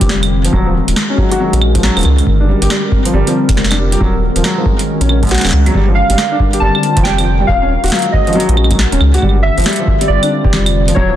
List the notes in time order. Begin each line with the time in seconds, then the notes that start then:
Already playing: D3 G3 C4 F4 A#4
0.01 F1 G4, kick, closed hi-hat
0.09 G3, snare
0.23 closed hi-hat, claves
0.45 F3, closed hi-hat
0.53 D#1 D#3 F#3, kick
0.60 G#3
0.66 F3
0.79 C#4 F#4
0.88 D#1, closed hi-hat
0.96 snare
1.10 C#4
1.18 F#3, kick
1.31 F#4, closed hi-hat
1.40 F#3
1.53 A#1, closed hi-hat
1.62 claves
1.75 F3, kick, closed hi-hat
1.83 F#3, snare
1.97 D#1 F3, closed hi-hat, claves
1.99 closed hi-hat
2.01 closed hi-hat
2.03 C#2, closed hi-hat, claves
2.18 closed hi-hat, claves
2.27 G1 D3, kick
2.40 D4
2.45 G3
2.52 C4
2.62 G1 G4, closed hi-hat
2.70 G3, snare
2.92 kick
3.05 F3 F4, closed hi-hat
3.14 G1 G3
3.27 F3, closed hi-hat
3.49 F1, kick, closed hi-hat
3.57 snare
3.64 snare
3.71 D4, snare, closed hi-hat, claves
3.73 claves
3.75 claves
3.79 G3
3.92 G4, closed hi-hat
4.01 D#1 D#3 F#3, kick
4.09 G#3
4.36 D#1 F3, closed hi-hat
4.41 F#3 C#4, snare
4.58 F3
4.66 kick
4.71 F#4
4.79 closed hi-hat
5.01 A#1 C#4, closed hi-hat
5.09 C#4, claves
5.23 F#2, kick, closed hi-hat
5.25 closed hi-hat
5.27 closed hi-hat
5.29 snare, closed hi-hat
5.31 F#4, snare, closed hi-hat
5.34 snare, closed hi-hat
5.38 snare, closed hi-hat
5.41 D#1 C#3, snare, closed hi-hat, claves
5.47 snare
5.49 snare
5.51 C#2, snare, claves
5.66 F#3, closed hi-hat, claves
5.75 G1 D3 G3, kick
5.88 F3
5.95 F5
5.99 G3
6.10 G1 G3, closed hi-hat
6.18 snare
6.32 D4
6.37 C4, kick
6.53 F4 G4, closed hi-hat
6.60 G1 G3 A5
6.75 claves
6.83 closed hi-hat
6.97 F1 F3, kick, closed hi-hat
7.03 G3 G5, snare
7.18 F3, closed hi-hat, claves
7.40 G3
7.47 D#1 D#3 F5, kick
7.62 C#4 F#4
7.68 G#3
7.77 C#4
7.84 D#1 F#4, closed hi-hat
7.86 closed hi-hat
7.88 closed hi-hat
7.90 F#3, snare, closed hi-hat
7.92 closed hi-hat
7.95 closed hi-hat
7.99 closed hi-hat
8.02 closed hi-hat
8.12 D#5, kick
8.27 F3, closed hi-hat
8.33 F#3, closed hi-hat
8.40 closed hi-hat
8.49 A#1 F3, closed hi-hat
8.57 claves
8.64 claves
8.71 F#3, kick, closed hi-hat, claves
8.79 snare
8.92 D#1 C#4, closed hi-hat
9.01 C#2, claves
9.14 F#4, closed hi-hat, claves
9.18 claves
9.22 G1 D3 G3, kick, claves
9.29 claves
9.39 G3 E5
9.58 G1 F3, closed hi-hat
9.60 closed hi-hat
9.62 closed hi-hat
9.64 G3 F4, snare, closed hi-hat
9.66 closed hi-hat
9.69 closed hi-hat
9.73 closed hi-hat
9.76 F3, closed hi-hat
9.81 C4
9.88 kick
10.01 G3, closed hi-hat
10.08 G1 D5
10.23 D4, closed hi-hat, claves
10.45 F1 G4, kick
10.53 G3, snare
10.66 closed hi-hat, claves
10.88 F3, closed hi-hat
10.95 D#1 D#3 F#3 C#5, kick
11.10 F3 G#3